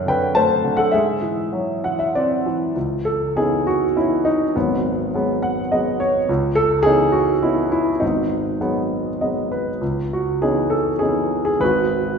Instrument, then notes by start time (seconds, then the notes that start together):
grand piano
Already playing: F#2 D3 F#3 A4 F#5
0.05 D3 B4 G5
0.35 A3 C5 A5
0.64 D3
0.77 A4 F#5
0.92 G#2 G#4 E5
1.22 E3
1.53 F#3
1.84 E3 F#5
1.99 E5
2.15 C4 D5
2.46 E3
2.76 C#2
3.05 A4
3.36 E3 B3 C#4 D#4 G#4
3.67 F#4
3.95 E3 B3 C#4 D#4 E4
4.25 D#4
4.56 G#1 G#2 F#3 B3
5.14 F#3 G#3 B3
5.43 F#5
5.71 F#3 G#3 B3 D#5
6.00 C#5
6.29 C#2
6.55 A4
6.83 E3 B3 C#4 D#4 G#4
7.12 F#4
7.43 E3 B3 C#4 D#4 E4
7.72 E4
8.00 G#1 G#2 B3 D#4
8.61 F#3 G#3 B3
9.21 F#3 G#3 B3 D#5
9.52 B4
9.81 C#2
10.13 F#4
10.42 E3 B3 C#4 D#4 G#4
10.70 A4
10.99 E3 B3 C#4 D#4 G#4
11.45 G#4
11.60 G#1 G#2 F#4 B4